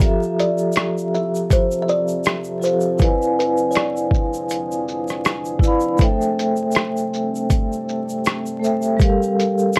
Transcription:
0.00 1.09 F3 medium
0.00 5.96 F3 medium
0.00 5.96 C4 medium
0.00 1.10 F4 medium
0.00 1.11 G4 medium
0.00 2.97 A4 medium
0.00 1.12 A4 medium
0.00 0.20 A#5 medium
0.00 kick loud
0.00 closed hi-hat medium
0.00 shaker medium
0.05 1.13 E5 loud
0.23 shaker soft
0.39 1.16 D5 medium
0.39 closed hi-hat medium
0.39 shaker soft
0.58 shaker medium
0.73 closed hi-hat medium
0.73 shaker medium
0.77 cross-stick loud
0.98 shaker soft
1.15 1.52 E5 medium
1.15 shaker soft
1.35 shaker medium
1.50 1.84 C5 medium
1.50 kick medium
1.50 closed hi-hat medium
1.50 shaker medium
1.72 shaker medium
1.82 1.88 E5 medium
1.89 2.59 D5 loud
1.89 shaker soft
2.08 shaker soft
2.24 cross-stick loud
2.24 closed hi-hat medium
2.24 shaker medium
2.44 shaker soft
2.60 2.90 F3 medium
2.60 2.91 F4 medium
2.60 2.92 G4 medium
2.60 3.02 C5 loud
2.60 shaker medium
2.65 2.93 A4 medium
2.65 2.93 F5 medium
2.65 shaker soft
2.81 shaker soft
2.97 5.96 D4 medium
2.97 4.09 E4 medium
2.97 5.97 G#4 medium
2.97 4.09 B4 medium
2.97 4.10 D5 medium
2.97 kick loud
2.97 shaker medium
3.02 3.38 B4 medium
3.02 4.11 F5 medium
3.02 4.12 G#5 medium
3.02 closed hi-hat medium
3.22 shaker soft
3.39 3.71 B4 medium
3.39 closed hi-hat medium
3.39 shaker soft
3.57 shaker soft
3.71 3.76 C#5 medium
3.71 shaker medium
3.75 4.83 D5 medium
3.75 cross-stick loud
3.75 closed hi-hat medium
3.97 shaker medium
4.11 kick medium
4.11 shaker soft
4.34 shaker medium
4.50 closed hi-hat medium
4.50 shaker medium
4.72 shaker medium
4.88 shaker soft
5.08 cross-stick soft
5.08 shaker soft
5.25 cross-stick loud
5.25 closed hi-hat medium
5.25 shaker medium
5.45 shaker medium
5.59 5.90 E4 loud
5.59 5.91 B4 medium
5.59 kick medium
5.59 shaker medium
5.63 5.92 D5 medium
5.63 5.93 F5 medium
5.63 shaker soft
5.67 5.94 B5 loud
5.80 shaker soft
5.97 8.96 G3 medium
5.97 7.09 A3 medium
5.97 8.96 C4 medium
5.97 7.09 A4 medium
5.97 8.96 A4 medium
5.97 7.10 C5 medium
5.97 kick loud
5.97 shaker medium
6.01 7.11 E5 medium
6.01 7.12 G5 loud
6.01 closed hi-hat medium
6.22 shaker soft
6.39 closed hi-hat medium
6.39 shaker medium
6.57 shaker soft
6.72 closed hi-hat medium
6.72 shaker medium
6.76 cross-stick loud
6.97 shaker soft
7.14 shaker soft
7.35 shaker medium
7.50 kick medium
7.50 closed hi-hat medium
7.50 shaker medium
7.73 shaker soft
7.89 shaker soft
8.09 shaker soft
8.25 cross-stick loud
8.25 closed hi-hat medium
8.25 shaker medium
8.46 shaker medium
8.59 8.90 A3 medium
8.59 8.91 A4 medium
8.59 8.91 C5 medium
8.64 8.92 E5 medium
8.64 8.93 G5 medium
8.64 shaker medium
8.64 shaker soft
8.82 shaker medium
8.97 9.79 F3 medium
8.97 9.79 G3 loud
8.97 9.79 A#3 medium
8.97 9.79 G4 medium
8.97 9.79 A4 medium
8.97 kick loud
8.97 shaker medium
9.01 9.79 A#4 medium
9.01 9.76 F5 loud
9.01 closed hi-hat medium
9.23 shaker soft
9.40 closed hi-hat soft
9.40 shaker soft
9.59 shaker soft
9.73 closed hi-hat medium
9.73 shaker medium

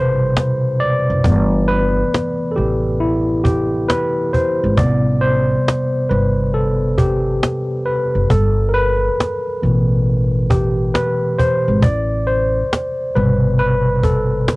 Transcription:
0.00 0.32 G1 medium
0.00 1.21 B2 medium
0.00 0.32 C3 soft
0.00 0.32 G3 soft
0.00 1.25 A4 medium
0.00 1.25 B4 medium
0.00 0.82 C5 medium
0.37 cajon slap loud
0.80 1.71 D5 loud
1.10 1.23 F#1 medium
1.24 2.02 G1 loud
1.24 2.53 E3 medium
1.24 2.53 A3 medium
1.24 2.53 B3 medium
1.24 cajon bass loud
1.68 2.47 B4 medium
2.14 cajon slap loud
2.52 2.56 A4 medium
2.56 3.85 A1 medium
2.56 2.97 G4 medium
3.00 3.46 E4 medium
3.44 3.90 G4 medium
3.44 cajon bass medium
3.89 4.34 B4 medium
3.89 cajon slap loud
4.33 4.78 C5 medium
4.33 cajon bass medium
4.64 4.76 G#1 medium
4.77 5.55 A1 medium
4.77 5.41 C3 medium
4.77 5.41 G3 medium
4.77 5.42 B3 medium
4.77 5.22 D5 medium
4.77 cajon bass loud
5.21 6.12 C5 loud
5.68 cajon slap loud
6.09 7.38 G1 medium
6.09 6.50 B4 medium
6.54 6.95 A4 medium
6.98 7.82 G4 medium
6.98 cajon bass medium
6.98 cajon slap soft
7.43 cajon slap loud
7.85 8.27 B4 medium
8.15 8.28 F#1 medium
8.30 9.08 G1 loud
8.30 8.48 A4 medium
8.30 cajon bass loud
8.69 8.74 A#4 medium
8.74 10.56 B4 loud
9.20 cajon slap loud
9.62 10.91 A1 medium
9.62 11.79 B2 medium
9.62 11.79 E3 medium
9.62 11.79 A3 soft
9.62 cajon slap soft
10.50 10.96 G4 medium
10.50 cajon bass medium
10.94 11.35 B4 medium
10.94 cajon slap loud
11.38 11.84 C5 loud
11.38 cajon bass medium
11.68 11.81 G#1 medium
11.82 12.60 A1 medium
11.82 12.02 D5 loud
11.82 cajon bass loud
12.27 13.11 C5 medium
12.27 cajon slap soft
12.73 cajon slap loud
13.15 14.44 G1 medium
13.15 14.56 B2 medium
13.15 14.56 C3 medium
13.15 14.56 G3 soft
13.15 13.58 B4 medium
13.15 cajon slap soft
13.58 14.00 B4 loud
13.58 cajon slap soft
14.03 14.56 A4 medium
14.03 cajon bass medium
14.03 cajon slap soft
14.48 cajon slap loud

